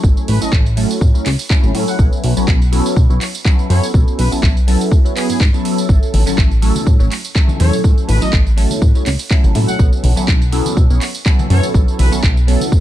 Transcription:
0.03 A1 F#3 A3 C#4 E4 A4, kick, tambourine
0.17 tambourine
0.28 A1 B4, open hi-hat
0.41 A1 F#3 A3 C#4 E4 A4 D#5, tambourine
0.52 A1, kick, clap
0.66 tambourine
0.76 F#3 A3 C#4 E4 A4, open hi-hat
0.91 tambourine
1.01 A2, kick, tambourine
1.14 C#2 F#3 A3 C#4 E4 C#5, tambourine
1.26 C#2, clap, open hi-hat
1.39 open hi-hat, tambourine
1.49 F#3 A3 C#4 E4 A4, kick, clap, tambourine
1.63 A1, tambourine
1.74 A2 F#3 A3 C#4 E4 A4, open hi-hat
1.88 F#5, tambourine
1.99 B1 F#3 B3 C#4 E4 A4, kick, tambourine
2.13 tambourine
2.23 B1, open hi-hat
2.36 B1 F#3 B3 C#4 E4 A4, tambourine
2.48 B1, kick, clap, tambourine
2.62 tambourine
2.72 F#3 B3 C#4 E4 A4, open hi-hat
2.86 tambourine
2.96 B2, kick, tambourine
3.10 B1 F#3 B3 C#4 E4 C#5, tambourine
3.21 clap, open hi-hat
3.35 tambourine
3.45 F#3 B3 C#4 E4 A4, kick, clap, tambourine
3.59 tambourine
3.69 F#2 F#3 B3 C#4 E4 A4 C#5, open hi-hat
3.83 tambourine
3.94 B1 F#3 B3 C#4 E4 A4, kick, tambourine
4.08 tambourine
4.19 B1 B4, open hi-hat
4.31 F#3 B3 C#4 E4 A4, tambourine
4.43 B1, kick, clap, tambourine
4.57 tambourine
4.67 F#3 B3 C#4 E4 A4, open hi-hat
4.81 tambourine
4.92 kick, tambourine
5.04 F#3 B3 C#4 E4 C#5, tambourine
5.15 F#3 B3 C#4 E4 G#4 B4, clap, open hi-hat
5.29 G#2 G#4, open hi-hat, tambourine
5.40 G#2, kick, clap, tambourine
5.53 F#3 B3 C#4 E4 A4, tambourine
5.65 open hi-hat
5.78 tambourine
5.89 A1 A3 C#4 E4 A4, kick, tambourine
6.02 tambourine, shaker
6.13 A1, open hi-hat, high conga, shaker
6.26 F#3 A3 C#4 E4 A4, tambourine, shaker
6.37 A1, kick, clap, tambourine, shaker
6.51 tambourine, shaker
6.62 F#3 A3 C#4 E4 A4, open hi-hat, shaker
6.75 tambourine, high conga, shaker
6.87 A2, kick, tambourine
6.99 A1 F#3 A3 C#4 E4 C#5, tambourine, shaker
7.12 clap, open hi-hat
7.24 tambourine, shaker
7.35 F#3 A3 C#4 E4 A4, kick, clap, tambourine
7.48 tambourine, high conga, shaker
7.60 E2 F#3 A3 C#4 E4 A4 C#5, open hi-hat, low conga, shaker
7.73 tambourine, shaker
7.84 A1 F#3 A3 C#4 E4 A4, kick, tambourine
7.97 tambourine, shaker
8.08 A1 B4, open hi-hat, high conga, shaker
8.21 F#3 A3 C#4 E4 A4 D#5, tambourine, shaker
8.33 A1, kick, clap, tambourine
8.45 tambourine, shaker
8.57 F#3 A3 C#4 E4 A4, open hi-hat
8.70 tambourine, high conga, shaker
8.82 A2, kick, tambourine
8.95 C#2 F#3 A3 C#4 E4 C#5, tambourine
9.06 C#2, clap, open hi-hat
9.19 open hi-hat, tambourine
9.30 F#3 A3 C#4 E4 A4, kick, clap, tambourine
9.43 A1, tambourine, high conga, shaker
9.54 A2 F#3 A3 C#4 E4 A4, open hi-hat, low conga, shaker
9.68 F#5, tambourine, shaker
9.79 B1 F#3 B3 C#4 E4 A4, kick, tambourine
9.93 tambourine, shaker
10.03 B1, open hi-hat, high conga, shaker
10.16 F#3 B3 C#4 E4 A4, tambourine, shaker
10.28 B1, kick, clap, tambourine, shaker
10.42 tambourine
10.52 F#3 B3 C#4 E4 A4, open hi-hat, shaker
10.64 tambourine, high conga, shaker
10.76 B2, kick, tambourine, shaker
10.90 B1 F#3 B3 C#4 E4 C#5, tambourine
11.01 clap, open hi-hat, shaker
11.15 tambourine, shaker
11.25 F#3 B3 C#4 E4 A4, kick, clap, tambourine
11.39 tambourine, high conga, shaker
11.50 F#2 F#3 B3 C#4 E4 A4 C#5, open hi-hat, low conga, shaker
11.63 tambourine, shaker
11.74 B1 F#3 B3 C#4 E4 A4, kick, tambourine, shaker
11.88 tambourine, shaker
11.99 B1 B4, open hi-hat, high conga, shaker
12.11 F#3 B3 C#4 E4 A4, tambourine, shaker
12.23 B1, kick, clap, tambourine
12.37 tambourine
12.47 F#3 B3 C#4 E4 A4, open hi-hat, shaker
12.60 tambourine, high conga, shaker
12.72 kick, tambourine, shaker

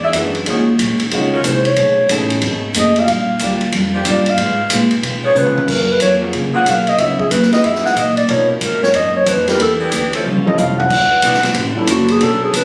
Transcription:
Already playing: E2
0.03 F#3 D4 E4 G#4 E5
0.13 F#2 E3 G#3 D4 E4 F#4 B4, kick, hi-hat pedal, ride
0.35 ride
0.46 D#2 D#3 F#3 G#3 C#4 D#4 F4 F#4 G#4 C#5, kick, ride
0.79 A#1 D#3 G#3 C#4 F#4, kick, hi-hat pedal, ride
0.99 muted upright bass stroke, ride
1.11 C#2 D#3 G#3 C#4 D#4 F4 F#4 C#5, kick, ride
1.33 F#3 C#4 F4 A#4
1.44 C2 D#3 G#3 C#4 F#4 C5, kick, hi-hat pedal, ride
1.65 C#5, ride
1.76 B1 B2 A3 D#4 G#4, kick, ride
2.09 A1 B2 A3 B3 D#4 G#4 A4 C#5, kick, hi-hat pedal, ride
2.30 ride
2.41 G#1 B2 A3 D#4, kick, ride
2.46 G#4
2.74 F#1 B2 A3 D#4 G#4, kick, hi-hat pedal, ride
2.79 D#5
2.96 A#3 D4 F4 G4 D5 F5, ride
3.08 A#1 A#2 G3 D4 F4, kick, ride
3.39 D2 A#2 G3 A#3 D4 F4 G4, kick, hi-hat pedal, ride
3.43 F4 D5
3.61 ride
3.72 F2 A#2 G3 D4 F4, kick, ride
3.94 F3 A#3 D4 G4
4.05 G2 A#2 G3 A#3 D4 F4 G4 D5, kick, hi-hat pedal, ride
4.09 D5
4.26 F5, ride
4.37 G#2 C#3 G#3 B3 F4, kick, ride
4.70 A#2 C#3 G#3 B3 F4, kick, hi-hat pedal, ride
4.91 muted upright bass stroke, ride
5.02 B2 C#3 G#3 B3 F4, kick, ride
5.23 F3 B3 C#4 G#4 C#5
5.35 C#3 G#3 B3 C#4 F4 G#4 B4 C#5, hi-hat pedal, mid tom
5.46 mid tom
5.57 mid tom
5.68 F#2 F#3 A#3 F4 G#4 A#4, kick, crash
5.91 B4
6.00 F2 F#3 A#3 F4 G#4 C#5, kick, hi-hat pedal, ride
6.22 A#3 F4 F#4 G#4 C#5
6.32 C#2 F#3 A#3 F4 G#4, kick, ride
6.54 F#3 A#3 F4 F#4 G#4 C#5 F#5, muted upright bass stroke
6.65 B1 F#3 A#3 F4 G#4, kick, hi-hat pedal, ride
6.70 F5
6.87 D#5, ride
6.98 C#2 C#3 F#3 B3 D#4 E4 F#4 C#5 E5, kick, ride
7.19 G#4, kick
7.30 D#2 C#3 F#3 B3 E4 B4, kick, hi-hat pedal, ride
7.42 snare
7.52 G#3 D#4 E4 F#4 A#4 D#5, snare, ride
7.63 F#2 E3 A#3 D#4 E5, kick, ride
7.75 snare
7.82 E3 A#3 D#4 G#4 F#5, muted upright bass stroke, snare
7.96 F#2 A#2 E3 A#3 D#4 D#5, kick, hi-hat pedal, ride
8.17 D5, ride
8.28 B2 F3 A#3 B3 C#4 D#4 A#4 C#5, kick, ride
8.51 F#4
8.61 G#2 B2 F3 A#3 D#4 A#4, kick, hi-hat pedal, ride
8.83 C#5, snare
8.94 F#2 B2 F3 A#3 D#4 D#5, kick, ride
9.16 C#5
9.26 F2 B2 F3 A#3 D#4 B4, kick, hi-hat pedal, ride
9.47 G3 B3 D4 E4 G4 A#4, snare, ride
9.59 E2 E3 B3 D4 G4 A4, kick, ride
9.79 E3 B3 D4 G4
9.92 D2 E3 B3 D4 G4, kick, hi-hat pedal, ride
10.13 F3 A3 C#4 A4, ride
10.24 C#2 A2 G3 C#4 F4, high tom
10.36 A1
10.46 G1 G3 C4 C#4 F4 A4 D#5, high tom
10.57 C2 A2 G3 C#4 F4 F5, floor tom, hi-hat pedal
10.78 F#5, floor tom
10.90 D2 D3 B3 E4 F#4, kick, crash
11.22 B1 D3 E3 B3 D4 E4 F#4, kick, hi-hat pedal, ride
11.34 snare
11.43 snare, ride
11.54 A1 D3 B3, kick, ride
11.59 E4 F#4
11.76 F#3 B3 D4 E4 A4, muted upright bass stroke
11.87 F#1 D3 B3 E4 F#4, kick, hi-hat pedal, ride
11.91 F#4
12.08 G#4, ride
12.20 B1 F#3 B3 C#4 D4 A4 C#5, kick, ride
12.44 G#4
12.53 C#2 B3 D4 A4 B4 C#5, kick, hi-hat pedal, ride

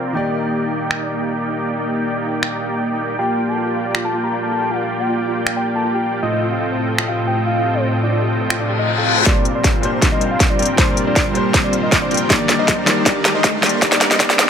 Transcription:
Already playing: A#3 C4 F4 G4 A#4 C5 D5 G5
0.13 D#3 A#3 D#4 G4 D5 G5
0.91 finger snap
2.43 finger snap
3.19 A#3 F4 G4 D5 F5 G5
3.29 D5
3.38 F4
3.48 F4 A5
3.57 F4
3.67 G4
3.76 F5
3.86 D5
3.95 F4, finger snap
4.05 F4 A5
4.14 F4
4.24 G4 A#5
4.33 F5
4.43 D5 A5
4.52 F4
4.62 F4
4.71 F4 F5
4.81 G4
4.90 F5
4.99 D5 G5
5.09 F4
5.18 F4
5.28 F4
5.37 G4
5.46 F5, finger snap
5.56 D5 G5
5.66 F4
5.75 F4 A5
5.84 F4
5.94 G4 G5
6.04 F5
6.13 D5
6.22 A2 C4 F4 A4 D#5 G5
6.32 F4
6.42 F4
6.51 G4 F5
6.61 D#5
6.70 C5
6.79 F4
6.89 F4
6.98 F4, finger snap
7.08 G4 F5
7.17 D#5
7.27 C5 G5
7.36 F4
7.46 F4 F5
7.55 F4
7.65 G4
7.74 C5 D#5
7.84 C5
7.93 F4
8.03 F4 D5
8.12 F4
8.22 G4
8.31 D#5
8.41 C5
8.50 F4, finger snap, reverse cymbal
8.60 F4 D5
8.69 G4
8.79 D#5
8.88 F5
8.98 A4 F5
9.07 G4
9.17 C5
9.24 A#2 G3 C4 D4 F4 A#4 C5 D5, kick, snare, closed hi-hat, riser
9.45 closed hi-hat
9.55 G3 C4 F4 A#4 C5 D5
9.64 kick, snare, closed hi-hat
9.81 A#2 G3 D4 C5, closed hi-hat
10.02 kick, snare, closed hi-hat
10.12 D#5
10.21 closed hi-hat
10.31 F5
10.40 kick, snare, closed hi-hat
10.50 D5
10.59 G3 C4 F4 A#4 G5, closed hi-hat
10.62 closed hi-hat
10.65 closed hi-hat
10.76 A#2 G3 C4 D4 F4 A#4 C5 D5, kick, snare, closed hi-hat
10.80 C5
10.97 closed hi-hat
11.07 G3 C4 F4 A#4 C5 D5
11.16 kick, snare, closed hi-hat
11.33 A#2 G3 D4, closed hi-hat
11.37 C5
11.54 kick, snare, closed hi-hat
11.64 D5
11.73 closed hi-hat
11.83 D#5
11.92 kick, snare, closed hi-hat
12.02 D5
12.11 G3 C4 F4 A#4 G5, closed hi-hat
12.14 closed hi-hat
12.17 closed hi-hat
12.28 D#3 G3 A#3 D4 D#4 G4 A#4 D5, kick, snare, closed hi-hat
12.49 snare, closed hi-hat
12.59 G3 D4 D#4 A#4 C5 D#5
12.68 kick, snare, closed hi-hat
12.85 D#3 A#3 G4, snare, closed hi-hat
12.89 D5
13.04 D#3 G3 A#3 D4 D#4 G4 A#4 D5, kick, snare, closed hi-hat
13.08 D5
13.25 snare, closed hi-hat
13.35 G3 D4 D#4 A#4 C5 D#5
13.44 kick, snare, closed hi-hat
13.61 D#3 A#3 G4, snare, closed hi-hat
13.65 D5, closed hi-hat
13.69 closed hi-hat
13.80 D#3 G3 A#3 D4 D#4 G4 A#4 D5, kick, snare, closed hi-hat
13.84 D5
13.92 snare
14.01 snare, closed hi-hat
14.11 G3 D4 D#4 A#4 C5 D#5, snare
14.18 D#3 G3 A#3 D4 D#4 G4 A#4 D5, kick, snare, closed hi-hat
14.30 snare
14.39 snare, closed hi-hat

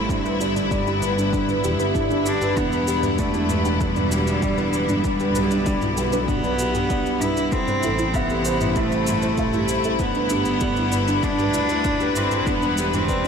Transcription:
Already playing: G3 E4 G4 A4 C5 E5
0.09 D3 G3 B3 D4 G4, kick, mid tom, shaker
0.24 B4, shaker
0.40 G1 D4 G4, shaker
0.56 D4, mid tom, shaker
0.71 D5, kick, shaker
0.87 E4 G4, shaker
1.02 B4, mid tom, shaker
1.18 D4, shaker
1.33 D4, kick, swell, shaker
1.49 B4, mid tom, shaker
1.64 E1 G4, shaker
1.79 G1 D4 B4, shaker
1.95 D4, kick, mid tom, shaker
2.11 D4 D5, shaker
2.26 D4 G4, shaker
2.41 G4 B4, mid tom, shaker
2.56 E1 G3 B3 D4, kick, mid tom, shaker
2.72 B4, shaker
2.87 G4, shaker
3.03 D4 B4, mid tom, shaker
3.19 A3 D4 D5, kick, shaker
3.34 D4 E4, shaker
3.49 B4, mid tom, shaker
3.65 D4 G4, shaker
3.80 G3 D4 B4, kick, shaker
3.96 D4 B4, mid tom, shaker
4.11 D4 G4, shaker
4.27 D4, shaker
4.42 G4 D5, kick, mid tom, shaker
4.58 E4 B4, shaker
4.73 D4 B4, shaker
4.89 D4, mid tom, shaker
5.04 G3 D4, kick, shaker
5.20 G4 B4, shaker
5.35 B1 G4 B4, mid tom, shaker
5.51 D4, shaker
5.66 D4 D5, kick, shaker
5.82 E4, mid tom, shaker
5.97 G4 B4, shaker
6.12 D4 B4, shaker
6.28 B3 D4, kick, mid tom, shaker
6.44 D4 B4, shaker
6.59 G4, shaker
6.75 D4 G4, mid tom, shaker
6.90 B4 D5, kick, shaker
7.06 D4 E4, shaker
7.21 D4 E4 B4, mid tom, shaker
7.37 D4, shaker
7.51 C3 A3 C4 E4 A4, kick, shaker
7.68 C5, mid tom, shaker
7.83 A1 E4 A4, shaker
7.99 E4, shaker
8.14 B3 E5, kick, mid tom, shaker
8.30 G4 A4, shaker
8.45 C5, shaker
8.61 E4, mid tom, shaker
8.76 A3 E4, kick, shaker
8.92 C5, shaker
9.07 A4, mid tom, shaker
9.22 E4 C5, shaker
9.38 A1 E4 E5, kick, shaker
9.53 E4 G4, mid tom, shaker
9.68 C5, shaker
9.84 E4 A4, shaker
9.99 D3 G3 B3 D4 B4, kick, mid tom, shaker
10.15 D4 B4, shaker
10.30 G1 D4 G4, shaker
10.45 D4, mid tom, shaker
10.61 G4 D5, kick, shaker
10.76 E4 B4, shaker
10.92 D4 B4, mid tom, shaker
11.08 D4, shaker
11.23 D4, kick, shaker
11.39 G4 B4, mid tom, shaker
11.54 D2 E4 D5, shaker
11.69 E4 B4, shaker
11.85 D4 D5, kick, mid tom, shaker
12.00 G4 B4, shaker
12.15 G1 C4 E4 D5, shaker
12.31 G4, mid tom, shaker
12.47 E1 D3 B3 D4, kick, mid tom, shaker
12.62 D4 B4, shaker
12.78 G4, shaker
12.93 C4 D4 G4, mid tom, shaker
13.08 B4 D5, kick, shaker
13.24 D4 E4, shaker

